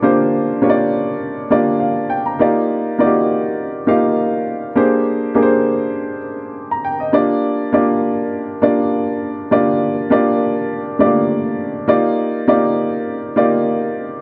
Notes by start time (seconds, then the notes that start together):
Already playing: A#3 D4 F4 G4 G#4 A#4 C#5 D5
0.02 A#3 D4 F4 G4 C5
0.62 A#3 D4 F4 G4 C#5
0.70 D5
1.50 A#3 D4 F4 G4 D5
1.80 F5
2.10 G5
2.26 A#5
2.39 A#3 D#4 F4 G4 D5
2.98 A#3 D#4 F4 F#4 D5
3.06 G4
3.87 A#3 D#4 F4 G4 F5
4.75 A#3 D4 G4 G#4 C5
5.35 A#3 D4 G4 G#4 A#4
5.42 C5
6.71 A#5
6.85 G5
7.00 D#5
7.13 A#3 D4 F4 G4 D5
7.73 A#3 D4 F4 G4 D5
8.62 A#3 D4 F4 G4 D5
9.51 A#3 D4 F4 G4 D5
10.10 A#3 D4 F4 G4 D5
10.99 A3 D4 F4 G4 D5
11.05 A#3
11.88 A#3 D#4 F4 G4 D5
12.47 A#3 D#4 F4 G4 D5
13.36 A#3 D#4 F4 G4 D5